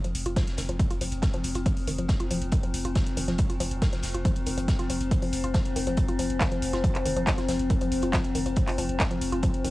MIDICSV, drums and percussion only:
0, 0, Header, 1, 2, 480
1, 0, Start_track
1, 0, Tempo, 431655
1, 885, Time_signature, 4, 2, 24, 8
1, 10790, End_track
2, 0, Start_track
2, 0, Title_t, "Drums"
2, 48, Note_on_c, 9, 42, 57
2, 159, Note_off_c, 9, 42, 0
2, 166, Note_on_c, 9, 42, 64
2, 166, Note_on_c, 9, 46, 107
2, 277, Note_off_c, 9, 42, 0
2, 277, Note_off_c, 9, 46, 0
2, 287, Note_on_c, 9, 42, 54
2, 399, Note_off_c, 9, 42, 0
2, 404, Note_on_c, 9, 42, 85
2, 405, Note_on_c, 9, 36, 115
2, 406, Note_off_c, 9, 42, 0
2, 406, Note_on_c, 9, 42, 97
2, 409, Note_on_c, 9, 38, 119
2, 517, Note_off_c, 9, 36, 0
2, 518, Note_off_c, 9, 42, 0
2, 520, Note_off_c, 9, 38, 0
2, 528, Note_on_c, 9, 42, 53
2, 540, Note_on_c, 9, 38, 43
2, 636, Note_off_c, 9, 38, 0
2, 636, Note_on_c, 9, 38, 57
2, 639, Note_off_c, 9, 42, 0
2, 640, Note_on_c, 9, 42, 70
2, 646, Note_on_c, 9, 46, 104
2, 747, Note_off_c, 9, 38, 0
2, 751, Note_off_c, 9, 42, 0
2, 758, Note_off_c, 9, 46, 0
2, 768, Note_on_c, 9, 42, 55
2, 879, Note_off_c, 9, 42, 0
2, 885, Note_on_c, 9, 36, 123
2, 885, Note_on_c, 9, 42, 88
2, 886, Note_off_c, 9, 42, 0
2, 886, Note_on_c, 9, 42, 94
2, 997, Note_off_c, 9, 36, 0
2, 997, Note_off_c, 9, 42, 0
2, 1008, Note_on_c, 9, 42, 56
2, 1014, Note_off_c, 9, 42, 0
2, 1014, Note_on_c, 9, 42, 41
2, 1125, Note_off_c, 9, 42, 0
2, 1126, Note_on_c, 9, 46, 107
2, 1129, Note_on_c, 9, 42, 71
2, 1237, Note_off_c, 9, 46, 0
2, 1239, Note_off_c, 9, 42, 0
2, 1239, Note_on_c, 9, 42, 42
2, 1248, Note_off_c, 9, 42, 0
2, 1248, Note_on_c, 9, 42, 54
2, 1359, Note_off_c, 9, 42, 0
2, 1359, Note_on_c, 9, 38, 117
2, 1365, Note_on_c, 9, 36, 125
2, 1365, Note_on_c, 9, 42, 89
2, 1368, Note_off_c, 9, 42, 0
2, 1368, Note_on_c, 9, 42, 84
2, 1470, Note_off_c, 9, 38, 0
2, 1477, Note_off_c, 9, 36, 0
2, 1479, Note_off_c, 9, 42, 0
2, 1488, Note_on_c, 9, 42, 52
2, 1598, Note_off_c, 9, 42, 0
2, 1598, Note_on_c, 9, 42, 71
2, 1605, Note_on_c, 9, 46, 109
2, 1710, Note_off_c, 9, 42, 0
2, 1717, Note_off_c, 9, 46, 0
2, 1719, Note_on_c, 9, 42, 44
2, 1727, Note_off_c, 9, 42, 0
2, 1727, Note_on_c, 9, 42, 55
2, 1839, Note_off_c, 9, 42, 0
2, 1845, Note_on_c, 9, 42, 95
2, 1846, Note_off_c, 9, 42, 0
2, 1846, Note_on_c, 9, 36, 118
2, 1846, Note_on_c, 9, 42, 97
2, 1957, Note_off_c, 9, 36, 0
2, 1958, Note_off_c, 9, 42, 0
2, 1968, Note_on_c, 9, 46, 62
2, 2079, Note_off_c, 9, 46, 0
2, 2086, Note_on_c, 9, 46, 112
2, 2095, Note_on_c, 9, 42, 65
2, 2197, Note_off_c, 9, 46, 0
2, 2207, Note_off_c, 9, 42, 0
2, 2208, Note_on_c, 9, 42, 54
2, 2319, Note_off_c, 9, 42, 0
2, 2320, Note_on_c, 9, 38, 103
2, 2325, Note_on_c, 9, 36, 121
2, 2326, Note_on_c, 9, 42, 97
2, 2431, Note_off_c, 9, 38, 0
2, 2437, Note_off_c, 9, 36, 0
2, 2437, Note_off_c, 9, 42, 0
2, 2447, Note_on_c, 9, 42, 55
2, 2559, Note_off_c, 9, 42, 0
2, 2564, Note_on_c, 9, 42, 69
2, 2566, Note_on_c, 9, 46, 105
2, 2676, Note_off_c, 9, 42, 0
2, 2677, Note_off_c, 9, 46, 0
2, 2688, Note_on_c, 9, 42, 57
2, 2799, Note_off_c, 9, 42, 0
2, 2800, Note_on_c, 9, 42, 88
2, 2806, Note_off_c, 9, 42, 0
2, 2806, Note_on_c, 9, 36, 127
2, 2806, Note_on_c, 9, 42, 94
2, 2917, Note_off_c, 9, 36, 0
2, 2917, Note_off_c, 9, 42, 0
2, 2927, Note_on_c, 9, 42, 52
2, 3039, Note_off_c, 9, 42, 0
2, 3045, Note_on_c, 9, 46, 110
2, 3050, Note_on_c, 9, 42, 67
2, 3157, Note_off_c, 9, 46, 0
2, 3161, Note_off_c, 9, 42, 0
2, 3167, Note_on_c, 9, 42, 54
2, 3278, Note_off_c, 9, 42, 0
2, 3282, Note_on_c, 9, 42, 83
2, 3285, Note_off_c, 9, 42, 0
2, 3285, Note_on_c, 9, 42, 90
2, 3286, Note_on_c, 9, 36, 123
2, 3289, Note_on_c, 9, 38, 103
2, 3396, Note_off_c, 9, 42, 0
2, 3397, Note_off_c, 9, 36, 0
2, 3400, Note_off_c, 9, 38, 0
2, 3407, Note_on_c, 9, 42, 54
2, 3518, Note_off_c, 9, 42, 0
2, 3522, Note_on_c, 9, 42, 65
2, 3525, Note_on_c, 9, 46, 112
2, 3633, Note_off_c, 9, 42, 0
2, 3636, Note_off_c, 9, 46, 0
2, 3645, Note_on_c, 9, 38, 45
2, 3647, Note_on_c, 9, 42, 55
2, 3756, Note_off_c, 9, 38, 0
2, 3759, Note_off_c, 9, 42, 0
2, 3760, Note_on_c, 9, 42, 86
2, 3765, Note_off_c, 9, 42, 0
2, 3765, Note_on_c, 9, 42, 92
2, 3766, Note_on_c, 9, 36, 117
2, 3876, Note_off_c, 9, 42, 0
2, 3877, Note_off_c, 9, 36, 0
2, 3888, Note_on_c, 9, 42, 54
2, 3999, Note_off_c, 9, 42, 0
2, 4003, Note_on_c, 9, 42, 69
2, 4005, Note_on_c, 9, 46, 113
2, 4114, Note_off_c, 9, 42, 0
2, 4116, Note_off_c, 9, 46, 0
2, 4127, Note_on_c, 9, 42, 54
2, 4238, Note_off_c, 9, 42, 0
2, 4245, Note_on_c, 9, 42, 99
2, 4246, Note_on_c, 9, 36, 123
2, 4247, Note_on_c, 9, 38, 123
2, 4251, Note_off_c, 9, 42, 0
2, 4251, Note_on_c, 9, 42, 89
2, 4357, Note_off_c, 9, 36, 0
2, 4358, Note_off_c, 9, 38, 0
2, 4362, Note_off_c, 9, 42, 0
2, 4366, Note_on_c, 9, 42, 54
2, 4371, Note_on_c, 9, 38, 37
2, 4476, Note_off_c, 9, 42, 0
2, 4476, Note_on_c, 9, 42, 75
2, 4482, Note_off_c, 9, 38, 0
2, 4485, Note_on_c, 9, 46, 109
2, 4491, Note_on_c, 9, 38, 58
2, 4587, Note_off_c, 9, 42, 0
2, 4596, Note_off_c, 9, 46, 0
2, 4602, Note_off_c, 9, 38, 0
2, 4607, Note_on_c, 9, 42, 52
2, 4718, Note_off_c, 9, 42, 0
2, 4725, Note_on_c, 9, 36, 124
2, 4725, Note_on_c, 9, 42, 90
2, 4729, Note_off_c, 9, 42, 0
2, 4729, Note_on_c, 9, 42, 90
2, 4837, Note_off_c, 9, 36, 0
2, 4840, Note_off_c, 9, 42, 0
2, 4842, Note_on_c, 9, 42, 44
2, 4847, Note_off_c, 9, 42, 0
2, 4847, Note_on_c, 9, 42, 52
2, 4958, Note_off_c, 9, 42, 0
2, 4960, Note_on_c, 9, 42, 68
2, 4965, Note_on_c, 9, 46, 106
2, 5071, Note_off_c, 9, 42, 0
2, 5076, Note_off_c, 9, 46, 0
2, 5087, Note_on_c, 9, 42, 46
2, 5088, Note_off_c, 9, 42, 0
2, 5088, Note_on_c, 9, 42, 53
2, 5199, Note_off_c, 9, 42, 0
2, 5205, Note_on_c, 9, 36, 122
2, 5205, Note_on_c, 9, 42, 87
2, 5206, Note_off_c, 9, 42, 0
2, 5206, Note_on_c, 9, 42, 89
2, 5207, Note_on_c, 9, 38, 111
2, 5317, Note_off_c, 9, 36, 0
2, 5317, Note_off_c, 9, 42, 0
2, 5318, Note_off_c, 9, 38, 0
2, 5327, Note_on_c, 9, 42, 50
2, 5438, Note_off_c, 9, 42, 0
2, 5442, Note_on_c, 9, 42, 75
2, 5445, Note_on_c, 9, 46, 112
2, 5554, Note_off_c, 9, 42, 0
2, 5556, Note_off_c, 9, 46, 0
2, 5567, Note_on_c, 9, 42, 50
2, 5568, Note_off_c, 9, 42, 0
2, 5568, Note_on_c, 9, 42, 43
2, 5679, Note_off_c, 9, 42, 0
2, 5685, Note_on_c, 9, 36, 119
2, 5685, Note_on_c, 9, 42, 94
2, 5687, Note_off_c, 9, 42, 0
2, 5687, Note_on_c, 9, 42, 89
2, 5797, Note_off_c, 9, 36, 0
2, 5799, Note_off_c, 9, 42, 0
2, 5807, Note_on_c, 9, 46, 62
2, 5918, Note_off_c, 9, 46, 0
2, 5922, Note_on_c, 9, 42, 64
2, 5925, Note_on_c, 9, 46, 112
2, 6033, Note_off_c, 9, 42, 0
2, 6036, Note_off_c, 9, 46, 0
2, 6047, Note_on_c, 9, 42, 50
2, 6158, Note_off_c, 9, 42, 0
2, 6160, Note_on_c, 9, 38, 110
2, 6162, Note_on_c, 9, 42, 82
2, 6165, Note_off_c, 9, 42, 0
2, 6165, Note_on_c, 9, 36, 122
2, 6165, Note_on_c, 9, 42, 93
2, 6271, Note_off_c, 9, 38, 0
2, 6277, Note_off_c, 9, 36, 0
2, 6277, Note_off_c, 9, 42, 0
2, 6287, Note_on_c, 9, 42, 53
2, 6398, Note_off_c, 9, 42, 0
2, 6406, Note_on_c, 9, 46, 108
2, 6414, Note_on_c, 9, 42, 65
2, 6517, Note_off_c, 9, 46, 0
2, 6525, Note_off_c, 9, 42, 0
2, 6528, Note_on_c, 9, 42, 52
2, 6639, Note_off_c, 9, 42, 0
2, 6639, Note_on_c, 9, 42, 82
2, 6645, Note_on_c, 9, 36, 119
2, 6646, Note_off_c, 9, 42, 0
2, 6646, Note_on_c, 9, 42, 85
2, 6756, Note_off_c, 9, 36, 0
2, 6758, Note_off_c, 9, 42, 0
2, 6767, Note_on_c, 9, 42, 49
2, 6878, Note_off_c, 9, 42, 0
2, 6885, Note_on_c, 9, 46, 105
2, 6890, Note_on_c, 9, 42, 69
2, 6996, Note_off_c, 9, 46, 0
2, 7001, Note_off_c, 9, 42, 0
2, 7007, Note_on_c, 9, 42, 50
2, 7118, Note_off_c, 9, 42, 0
2, 7122, Note_on_c, 9, 42, 81
2, 7124, Note_off_c, 9, 42, 0
2, 7124, Note_on_c, 9, 39, 108
2, 7124, Note_on_c, 9, 42, 80
2, 7125, Note_on_c, 9, 36, 120
2, 7127, Note_on_c, 9, 38, 104
2, 7236, Note_off_c, 9, 36, 0
2, 7236, Note_off_c, 9, 39, 0
2, 7236, Note_off_c, 9, 42, 0
2, 7239, Note_off_c, 9, 38, 0
2, 7247, Note_on_c, 9, 42, 49
2, 7358, Note_off_c, 9, 42, 0
2, 7365, Note_on_c, 9, 46, 105
2, 7368, Note_on_c, 9, 42, 69
2, 7476, Note_off_c, 9, 46, 0
2, 7479, Note_off_c, 9, 42, 0
2, 7483, Note_on_c, 9, 38, 46
2, 7487, Note_on_c, 9, 42, 50
2, 7595, Note_off_c, 9, 38, 0
2, 7599, Note_off_c, 9, 42, 0
2, 7605, Note_on_c, 9, 36, 116
2, 7606, Note_on_c, 9, 42, 92
2, 7716, Note_off_c, 9, 36, 0
2, 7718, Note_off_c, 9, 42, 0
2, 7728, Note_on_c, 9, 39, 57
2, 7728, Note_on_c, 9, 42, 51
2, 7839, Note_off_c, 9, 39, 0
2, 7839, Note_off_c, 9, 42, 0
2, 7846, Note_on_c, 9, 46, 106
2, 7849, Note_on_c, 9, 42, 70
2, 7957, Note_off_c, 9, 46, 0
2, 7960, Note_off_c, 9, 42, 0
2, 7968, Note_on_c, 9, 42, 48
2, 8079, Note_off_c, 9, 42, 0
2, 8081, Note_on_c, 9, 38, 111
2, 8085, Note_on_c, 9, 36, 120
2, 8086, Note_on_c, 9, 39, 115
2, 8086, Note_on_c, 9, 42, 88
2, 8088, Note_off_c, 9, 42, 0
2, 8088, Note_on_c, 9, 42, 88
2, 8193, Note_off_c, 9, 38, 0
2, 8196, Note_off_c, 9, 36, 0
2, 8197, Note_off_c, 9, 39, 0
2, 8199, Note_off_c, 9, 42, 0
2, 8208, Note_on_c, 9, 38, 39
2, 8208, Note_on_c, 9, 42, 49
2, 8319, Note_off_c, 9, 38, 0
2, 8319, Note_off_c, 9, 42, 0
2, 8325, Note_on_c, 9, 46, 104
2, 8328, Note_on_c, 9, 38, 57
2, 8330, Note_on_c, 9, 42, 66
2, 8436, Note_off_c, 9, 46, 0
2, 8439, Note_off_c, 9, 38, 0
2, 8441, Note_off_c, 9, 42, 0
2, 8446, Note_on_c, 9, 42, 50
2, 8557, Note_off_c, 9, 42, 0
2, 8563, Note_on_c, 9, 42, 85
2, 8564, Note_off_c, 9, 42, 0
2, 8564, Note_on_c, 9, 42, 90
2, 8565, Note_on_c, 9, 36, 117
2, 8675, Note_off_c, 9, 42, 0
2, 8676, Note_off_c, 9, 36, 0
2, 8686, Note_on_c, 9, 42, 50
2, 8687, Note_off_c, 9, 42, 0
2, 8687, Note_on_c, 9, 42, 47
2, 8798, Note_off_c, 9, 42, 0
2, 8805, Note_on_c, 9, 46, 97
2, 8807, Note_on_c, 9, 42, 71
2, 8916, Note_off_c, 9, 46, 0
2, 8917, Note_off_c, 9, 42, 0
2, 8917, Note_on_c, 9, 42, 40
2, 8926, Note_off_c, 9, 42, 0
2, 8926, Note_on_c, 9, 42, 48
2, 9038, Note_off_c, 9, 42, 0
2, 9041, Note_on_c, 9, 42, 89
2, 9044, Note_off_c, 9, 42, 0
2, 9044, Note_on_c, 9, 39, 107
2, 9044, Note_on_c, 9, 42, 84
2, 9045, Note_on_c, 9, 36, 118
2, 9049, Note_on_c, 9, 38, 107
2, 9156, Note_off_c, 9, 39, 0
2, 9156, Note_off_c, 9, 42, 0
2, 9157, Note_off_c, 9, 36, 0
2, 9160, Note_off_c, 9, 38, 0
2, 9167, Note_on_c, 9, 42, 51
2, 9278, Note_off_c, 9, 42, 0
2, 9285, Note_on_c, 9, 42, 69
2, 9285, Note_on_c, 9, 46, 105
2, 9396, Note_off_c, 9, 42, 0
2, 9396, Note_off_c, 9, 46, 0
2, 9406, Note_on_c, 9, 42, 51
2, 9517, Note_off_c, 9, 42, 0
2, 9520, Note_on_c, 9, 42, 83
2, 9524, Note_off_c, 9, 42, 0
2, 9524, Note_on_c, 9, 42, 90
2, 9525, Note_on_c, 9, 36, 113
2, 9635, Note_off_c, 9, 42, 0
2, 9637, Note_off_c, 9, 36, 0
2, 9646, Note_on_c, 9, 39, 58
2, 9646, Note_on_c, 9, 46, 58
2, 9757, Note_off_c, 9, 39, 0
2, 9757, Note_off_c, 9, 46, 0
2, 9765, Note_on_c, 9, 42, 68
2, 9765, Note_on_c, 9, 46, 105
2, 9876, Note_off_c, 9, 46, 0
2, 9877, Note_off_c, 9, 42, 0
2, 9887, Note_on_c, 9, 42, 49
2, 9998, Note_off_c, 9, 42, 0
2, 10004, Note_on_c, 9, 42, 88
2, 10005, Note_off_c, 9, 42, 0
2, 10005, Note_on_c, 9, 39, 126
2, 10005, Note_on_c, 9, 42, 89
2, 10006, Note_on_c, 9, 36, 117
2, 10006, Note_on_c, 9, 38, 111
2, 10116, Note_off_c, 9, 39, 0
2, 10116, Note_off_c, 9, 42, 0
2, 10117, Note_off_c, 9, 36, 0
2, 10117, Note_off_c, 9, 38, 0
2, 10127, Note_on_c, 9, 42, 48
2, 10238, Note_off_c, 9, 42, 0
2, 10245, Note_on_c, 9, 46, 101
2, 10247, Note_on_c, 9, 42, 73
2, 10356, Note_off_c, 9, 46, 0
2, 10358, Note_off_c, 9, 42, 0
2, 10368, Note_on_c, 9, 42, 50
2, 10479, Note_off_c, 9, 42, 0
2, 10482, Note_on_c, 9, 42, 84
2, 10486, Note_off_c, 9, 42, 0
2, 10486, Note_on_c, 9, 36, 112
2, 10486, Note_on_c, 9, 42, 92
2, 10597, Note_off_c, 9, 36, 0
2, 10597, Note_off_c, 9, 42, 0
2, 10608, Note_on_c, 9, 42, 51
2, 10719, Note_off_c, 9, 42, 0
2, 10725, Note_on_c, 9, 46, 97
2, 10731, Note_on_c, 9, 42, 67
2, 10790, Note_off_c, 9, 42, 0
2, 10790, Note_off_c, 9, 46, 0
2, 10790, End_track
0, 0, End_of_file